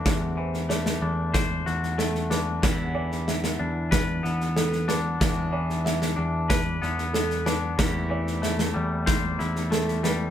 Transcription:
<<
  \new Staff \with { instrumentName = "Felt piano" } { \time 4/4 \key e \minor \tempo 4 = 93 r8 c''8 d''4 r4 a'8 b'8 | r8 d''8 e''4 b'4 a'8 b'8 | r8 d''8 e''4 b'4 a'8 b'8 | r8 d''8 e''4 r4 a'8 b'8 | }
  \new Staff \with { instrumentName = "Clean electric guitar" } { \time 4/4 \key e \minor <e, a d' fis' c''>8 e8 a8 d'8 c''8 fis'8 a8 d'8 | e,8 e4 d'8 b'8 b4 d'8 | e,8 e4 d'8 b'8 b4 d'8 | e,8 e8 a8 g8 c''8 e'8 a8 g8 | }
  \new Staff \with { instrumentName = "Pedal steel guitar" } { \time 4/4 \key e \minor << { fis'1 | e'1 | d'1 | e'1 | } \\ { <d a c'>1 | <d e b>1~ | <d e b>1 | <c a g'>1 | } >> }
  \new Staff \with { instrumentName = "Picked electric bass" } { \clef bass \time 4/4 \key e \minor e,4. e,4 e,4. | e,4. e,4 e,4. | e,4. e,4 e,4. | e,4. e,4 e,4. | }
  \new DrumStaff \with { instrumentName = "Drums" } \drummode { \time 4/4 <bd sn>8. sn16 sn16 sn8. <bd sn>8 sn16 sn16 sn16 sn16 sn8 | <bd sn>8. sn16 sn16 sn8. <bd sn>8 sn16 sn16 sn16 sn16 sn8 | <bd sn>8. sn16 sn16 sn8. <bd sn>8 sn16 sn16 sn16 sn16 sn8 | <bd sn>8. sn16 sn16 sn8. <bd sn>8 sn16 sn16 sn16 sn16 sn8 | }
>>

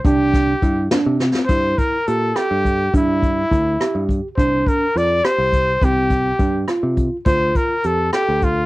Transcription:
<<
  \new Staff \with { instrumentName = "Trumpet" } { \time 5/8 \key g \dorian \tempo 4 = 104 g'4. r4 | c''8 bes'8 a'8 g'4 | e'2 r8 | c''8 bes'8 d''8 c''4 |
g'4. r4 | c''8 bes'8 a'8 g'8 f'8 | }
  \new Staff \with { instrumentName = "Tine electric piano" } { \time 5/8 \key g \dorian d'4 e'8 d'8 c'8 | e'4 g'8 a'4 | d'4 e'8 g'4 | d'4 f'8 g'4 |
c'4 d'8 f'4 | f'4 g'8 a'4 | }
  \new Staff \with { instrumentName = "Picked electric bass" } { \clef bass \time 5/8 \key g \dorian c,4 g,8 r16 c8 r16 | g,8 r8 bes,8 r16 g,8. | g,4 d,8 r16 g,8 r16 | c,8 r8 f,8 r16 c,8. |
c,4 g,8 r16 c8 r16 | d,8 r8 f,8 r16 d,8. | }
  \new DrumStaff \with { instrumentName = "Drums" } \drummode { \time 5/8 <hh bd>8 <hh bd sn>8 <hh bd>8 <hh sn>8 sn16 sn16 | <hh bd>8 <hh bd>8 hh8 <hh ss>8 <hh bd>8 | <hh bd>8 <hh bd>8 <hh bd>8 <hh ss>8 <hh bd>8 | <hh bd>8 <hh bd>8 hh8 <hh ss>8 <hh bd>8 |
<hh bd>8 <hh bd>8 <hh bd>8 <hh ss>8 <hh bd>8 | <hh bd>8 <hh bd>8 hh8 <hh ss>8 <hh bd>8 | }
>>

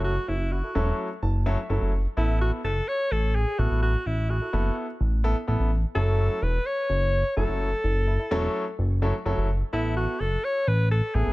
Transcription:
<<
  \new Staff \with { instrumentName = "Alto saxophone" } { \time 4/4 \key fis \minor \tempo 4 = 127 fis'8 e'8 fis'4 r2 | r8 e'8 fis'8 a'8 cis''8 a'8 gis'8 fis'8 | fis'8 e'8 fis'4 r2 | r8 a'4 b'8 cis''4. a'8~ |
a'2~ a'8 r4. | r8 e'8 fis'8 a'8 cis''8 b'8 a'8 gis'8 | }
  \new Staff \with { instrumentName = "Grand piano" } { \time 4/4 \key fis \minor << { r2 r8 a''8 e''4 | r1 | r1 | r1 |
r1 | r1 | } \\ { <fis a cis' e' a'>16 r8. <e' fis'>16 <e' a'>16 <fis a cis' e' a'>8. r8. <fis a cis' e' a'>16 r16 <fis a cis' e' a'>8 | r8 <b e' a'>4 r2 <b e' a'>8~ | <b e' a'>16 r8. <e' gis'>16 <e' a'>16 <b e' a'>8. r8. <b e' a'>16 r16 <b e' a'>8 | r8 <fis a cis' e' a'>4 r2 <fis a cis' e' a'>8~ |
<fis a cis' e' a'>16 r8. <e' a'>16 <e' a'>16 <fis a cis' e' a'>8. r8. <fis a cis' e' a'>16 r16 <fis a cis' e' a'>8 | r8 <b e' a'>4 r2 <b e' a'>8 | } >> }
  \new Staff \with { instrumentName = "Analog synth bass" } { \clef bass \time 4/4 \key fis \minor fis,,8 fis,,4 e,,8 r8 fis,,4 fis,,16 fis,,16~ | fis,,8 a,,4 fis,,8 r8 a,,4 a,,16 a,,16~ | a,,8 a,,4 fis,,8 r8 a,,4 a,,16 a,,16~ | a,,8 fis,,4 e,,8 r8 fis,,4 fis,,16 fis,,16~ |
fis,,8 fis,,4 e,,8 r8 fis,,4 fis,,16 fis,,16~ | fis,,8 a,,4 fis,,8 r8 a,,4 a,,16 a,,16 | }
>>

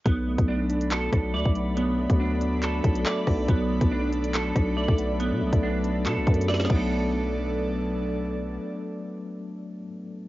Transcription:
<<
  \new Staff \with { instrumentName = "Analog synth pad" } { \time 4/4 \key b \minor \tempo 4 = 140 <a' d'' b''>1~ | <a' d'' b''>1~ | <a' d'' b''>1~ | <a' d'' b''>2.~ <a' d'' b''>8 <b a' d''>8~ |
<b a' d''>1~ | <b a' d''>1 | }
  \new Staff \with { instrumentName = "Clean electric guitar" } { \time 4/4 \key b \minor b4 d'4 a'4 d''4 | b4 d'4 a'4 d''4 | b4 d'4 a'4 d''4 | b4 d'4 a'4 d''8 <b d' a'>8~ |
<b d' a'>1~ | <b d' a'>1 | }
  \new Staff \with { instrumentName = "Tine electric piano" } { \time 4/4 \key b \minor fis8 a8 b8 d'8 fis'8 fis8 a8 b8 | fis8 a8 b8 d'8 fis'8 fis8 a8 b8 | fis8 a8 b8 d'8 fis'8 fis8 a8 b8 | fis8 a8 b8 d'8 fis'8 fis8 a8 <fis a b d'>8~ |
<fis a b d'>1~ | <fis a b d'>1 | }
  \new Staff \with { instrumentName = "808-style bass" } { \clef bass \time 4/4 \key b \minor b,,8. b,,4.~ b,,16 b,,8 d,16 b,,8.~ | b,,8. d,4.~ d,16 b,,8 r8 b,,8 | b,,8. b,,4.~ b,,16 b,,8. b,,8.~ | b,,16 b,16 b,,16 b,,4~ b,,16 b,16 b,,16 fis,4 b,,8~ |
b,,1 | r1 | }
  \new DrumStaff \with { instrumentName = "Drums" } \drummode { \time 4/4 <hh bd>8. <hh bd>16 r8 hh16 hh16 <hc hh>8 <hh bd ss>8 r16 bd16 hh8 | hh8. <hh bd>16 r8 hh8 <hc hh>8 <hh bd>16 hh16 hc8 <hho bd ss>8 | <hh bd>8. <hh bd>16 r8 hh16 hh16 <hc hh>8 <hh bd ss>8 r16 bd16 hh8 | hh8. <hh bd>16 r8 hh8 \tuplet 3/2 { <hc hh>16 r16 r16 <hh bd>16 hh16 hh16 } sn32 sn32 sn32 sn32 <cymc bd>8 |
r4 r4 r4 r4 | r4 r4 r4 r4 | }
>>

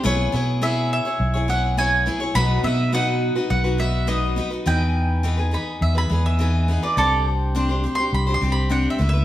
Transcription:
<<
  \new Staff \with { instrumentName = "Mandolin" } { \time 4/4 \key e \major \tempo 4 = 104 r4 e''8 e''4 fis''8 gis''4 | b''8 e''8 fis''4 fis''8 e''8 dis''8. r16 | g''4. b''8 e''16 b''8 e''4 d''16 | <a' d''>8 r8 \tuplet 3/2 { r4 c'''8 b''8 c'''8 b''8 fis''8 e''8 e''8 } | }
  \new Staff \with { instrumentName = "Steel-string acoustic guitar" } { \time 4/4 \key e \major <b e' gis' cis''>8 <b e' gis' cis''>8 <b e' gis' cis''>8. <e' gis' cis''>8 <e' gis' cis''>16 <b e' gis' cis''>8 <b e' gis' cis''>8 <b e' gis' cis''>16 <e' gis' cis''>16 | <b, fis b dis' fis' b'>8 <b dis' fis' b'>8 <b, fis b dis' fis' b'>8. <b dis' fis' b'>8 <b dis' fis' b'>16 <b dis' fis' b'>8 <b, fis b dis' fis' b'>8 <b dis' fis' b'>16 <b dis' fis' b'>16 | <e b dis' gis' b'>4 <e b dis' gis' b'>16 <dis' gis' b'>16 <b dis' gis' b'>8. <dis' gis' b'>16 <b dis' gis' b'>8 <e b dis' gis' b'>8 <b dis' gis' b'>16 <dis' gis' b'>16 | <c' d' g' c''>4 <c' d' g' c''>16 <d' g' c''>16 <c' d' g' c''>16 <d' g' c''>8 <d' g' c''>16 <c' d' g' c''>8 <c' d' g' c''>8 <a b e' b'>16 <b e' b'>16 | }
  \new Staff \with { instrumentName = "Fingered electric bass" } { \clef bass \time 4/4 \key e \major b,,8 b,4. b,,2 | b,,8 b,4. b,,2 | e,2 e,8 e,4. | c,2 c,8 c,4 cis,8 | }
>>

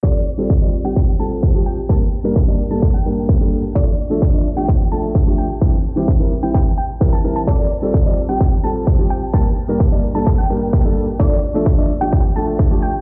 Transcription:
<<
  \new Staff \with { instrumentName = "Synth pluck" } { \time 4/4 \key f \major \tempo 4 = 129 d''4. r16 g''16 r8 a''16 r8. g''16 r16 | a''16 r4. a''8 g''8. r4 | d''4. r16 g''16 r8 a''16 r8. g''16 r16 | r4. r16 g''16 g''16 r16 g''16 r8 a''8 a''16 |
d''4. r16 g''16 r8 a''16 r8. g''16 r16 | a''16 r4. a''8 g''8. r4 | d''4. r16 g''16 r8 a''16 r8. g''16 r16 | }
  \new Staff \with { instrumentName = "Felt piano" } { \time 4/4 \key f \major <g c' f' a'>16 r8 <g c' f' a'>16 r16 <g c' f' d''>16 r16 <g c' f' g'>8 r16 <g c' f' a'>8. <g c' f' g'>8 r16 | <g, g bes d' bes'>16 r8 <g, g bes d' bes'>16 r16 <g, g bes d' d''>16 r16 <g, g bes d' a'>8 r16 <g, g bes d' bes'>8. <g, g bes d' a'>8 r16 | <f a d' a'>16 r8 <f a d' a'>16 r16 <f a d' d''>16 r16 <f a d' g'>8 r16 <f a d' a'>8. <f a d' g'>8 r16 | <e g c' g'>16 r8 <e g c' g'>16 r16 <e g c' bes'>16 r16 <e g c' e'>8 r8. <e g c' bes'>16 r16 <e g c' bes'>8 |
<g c' f' a'>16 r8 <g c' f' a'>16 r16 <g c' f' d''>16 r16 <g c' f' g'>8 r16 <g c' f' a'>8. <g c' f' g'>8 r16 | <g, g bes d' bes'>16 r8 <g, g bes d' bes'>16 r16 <g, g bes d' d''>16 r16 <g, g bes d' a'>8 r16 <g, g bes d' bes'>8. <g, g bes d' a'>8 r16 | <f a d' a'>16 r8 <f a d' a'>16 r16 <f a d' d''>16 r16 <f a d' g'>8 r16 <f a d' a'>8. <f a d' g'>8 r16 | }
  \new DrumStaff \with { instrumentName = "Drums" } \drummode { \time 4/4 <hh bd>8 hh16 hh16 <hh bd>8 hh16 hh16 <hh bd>8 hh16 hh16 <hh bd>16 hh16 hh16 hh16 | <hh bd>8 hh16 hh16 <hh bd>8 hh16 hh16 <hh bd>8 hh16 hh16 <hh bd>16 hh16 hh16 hh16 | <hh bd>8 hh16 hh16 <hh bd>8 hh16 hh16 <hh bd>8 hh16 hh16 <hh bd>16 hh16 hh16 hh16 | <hh bd>16 hh16 hh16 hh16 <hh bd>8 hh16 hh16 <hh bd>16 hh16 hh16 hh16 <hh bd>8 hh16 hh16 |
<hh bd>8 hho16 hh16 <hh bd>8 hho16 hh16 <hh bd>8 hho16 hh16 <hh bd>16 hh16 hho16 hh16 | <hh bd>8 hho16 hh16 <hh bd>8 hho16 hh16 <hh bd>8 hho16 hh16 <hh bd>16 hh16 hho16 hh16 | <hh bd>8 hho16 hh16 <hh bd>8 hho16 hh16 <hh bd>8 hho16 hh16 <hh bd>16 hh16 hho16 hh16 | }
>>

